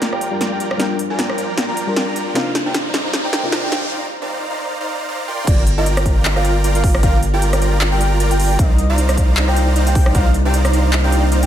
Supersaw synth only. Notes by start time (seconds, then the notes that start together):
Already playing: D5 A#5
0.12 F4 A#4 D5 G5 A#5
0.41 F4 A#4 D5 G5 A#5
0.60 F4 A#4 D5 G5 A#5
0.80 F4 A#4 D5 G5 A#5
1.10 F4 A#4 D5 G5 A#5
1.38 F4 A#4 D5 G5 A#5
1.68 F4 A#4 D5 G5 A#5
1.96 F4 A#4 D5 G5 A#5
2.16 F4 A#4 D5 G5 A#5
2.35 D#4 C5 D5 F5 A#5
2.66 D#4 C5 D5 F5 A#5
2.94 D#4 C5 D5 F5 A#5
3.24 D#4 C5 D5 F5 A#5
3.52 D#4 C5 D5 F5 A#5
3.72 D#4 C5 D5 F5 G5
3.91 D#4 C5 D5 F5 A#5
4.22 D#4 C5 D5 F5 A#5
4.50 D#4 C5 D5 F5 A#5
4.80 D#4 C5 D5 F5 A#5
5.08 D#4 C5 D5 F5 A#5
5.28 F4 A#4 D5 G5 C6
5.47 F4 A#4 G5
5.78 F4 A#4 D5 G5 A#5
6.06 F4 A#4 D5 G5 A#5
6.36 F4 A#4 D5 G5 A#5
6.64 F4 A#4 D5 G5 A#5
6.84 F4 A#4 D5 G5 A#5
7.03 F4 A#4 D5 G5 A#5
7.33 F4 A#4 D5 G5 A#5
7.62 F4 A#4 D5 G5 A#5
7.92 F4 A#4 D5 G5 A#5
8.20 F4 A#4 D5 G5 A#5
8.39 F4 A#4 D5 G5 A#5
8.59 D#4 C5 D5 F5 A#5
8.90 D#4 C5 D5 F5 A#5
9.18 D#4 C5 D5 F5 A#5
9.48 D#4 C5 D5 F5 A#5
9.76 D#4 C5 D5 F5 A#5
9.95 D#4 C5 D5 F5 G5
10.15 D#4 C5 D5 F5 A#5
10.45 D#4 C5 D5 F5 A#5
10.73 D#4 C5 D5 F5 A#5
11.04 D#4 C5 D5 F5 A#5
11.32 D#4 C5 D5 F5 A#5